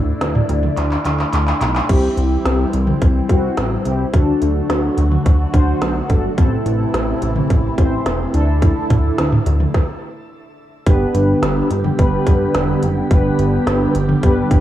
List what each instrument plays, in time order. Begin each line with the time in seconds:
Already playing: analog synth bass D2, analog synth pad A3 D4 E4 D5
0.21 analog synth bass D2, snare, closed hi-hat
0.35 mid tom
0.49 analog synth bass D2, closed hi-hat
0.63 mid tom
0.77 analog synth bass D2, clap, closed hi-hat
0.91 clap
1.05 analog synth bass D2, clap, closed hi-hat
1.19 clap
1.33 analog synth bass D2, clap, closed hi-hat
1.47 clap
1.61 analog synth bass B1, clap, closed hi-hat
1.75 clap
1.89 analog synth bass C2, analog synth pad E3 G3 C4 E4, analog polysynth C4 E4 G4, kick, closed hi-hat, crash
2.17 analog synth bass C2, closed hi-hat
2.45 analog synth bass C2, snare, closed hi-hat
2.73 analog synth bass C2, closed hi-hat
2.87 mid tom
3.02 analog synth bass C2, kick, closed hi-hat
3.29 analog synth bass C2, analog polysynth C4 E4 F#4, kick, closed hi-hat
3.57 analog synth bass A1, snare, closed hi-hat
3.85 analog synth bass C2, analog polysynth C4 E4 G4, closed hi-hat
4.14 analog synth bass D2, analog synth pad D3 F#3 A3 F#4, analog polysynth D4 F#4 A4, kick, closed hi-hat
4.42 analog synth bass D2, closed hi-hat
4.70 analog synth bass D2, snare, closed hi-hat
4.98 analog synth bass D2, closed hi-hat
5.11 mid tom
5.26 analog synth bass D2, kick, closed hi-hat
5.54 analog synth bass D2, analog polysynth D4 F#4 C5, kick, closed hi-hat
5.82 analog synth bass B1, snare, closed hi-hat
6.10 analog synth bass G1, analog polysynth D4 F#4 A4, kick, closed hi-hat
6.38 analog synth bass A1, analog synth pad C3 E3 E4, analog polysynth C4 E4 A4, kick, closed hi-hat
6.66 analog synth bass A1, closed hi-hat
6.94 analog synth bass A1, snare, closed hi-hat
7.22 analog synth bass A1, closed hi-hat
7.36 mid tom
7.50 analog synth bass A1, kick, closed hi-hat
7.78 analog synth bass A1, analog polysynth C4 E4 C5, kick, closed hi-hat
8.06 analog synth bass E1, snare, closed hi-hat
8.34 analog synth bass D2, analog synth pad D3 E4, analog polysynth D4 E4 A4, closed hi-hat
8.62 kick, closed hi-hat
8.90 analog synth bass D2, kick, closed hi-hat, mid tom
9.18 analog synth bass D2, snare, closed hi-hat
9.32 mid tom
9.46 analog synth bass D2, closed hi-hat
9.60 mid tom
9.74 kick, snare
10.86 analog synth bass G1, analog synth pad D3 G3 B3 G4, analog polysynth B3 D4 G4 B4, kick, closed hi-hat
11.15 analog synth bass G1, closed hi-hat
11.43 analog synth bass G1, snare, closed hi-hat
11.71 analog synth bass G1, closed hi-hat
11.84 mid tom
11.99 analog synth bass G1, analog polysynth B3 D4 G4 B4, kick, closed hi-hat
12.27 analog synth bass G1, kick, closed hi-hat
12.55 analog synth bass E1, snare, closed hi-hat
12.83 analog synth bass F#1, closed hi-hat
13.11 analog synth bass G1, analog synth pad G3 G4, analog polysynth B3 D4 G4 B4, kick, closed hi-hat
13.39 analog synth bass G1, closed hi-hat
13.67 analog synth bass G1, snare, closed hi-hat
13.95 analog synth bass G1, closed hi-hat
14.09 mid tom
14.23 analog synth bass G1, analog polysynth B3 D4 G4 B4, kick, closed hi-hat
14.51 analog synth bass G1, kick, closed hi-hat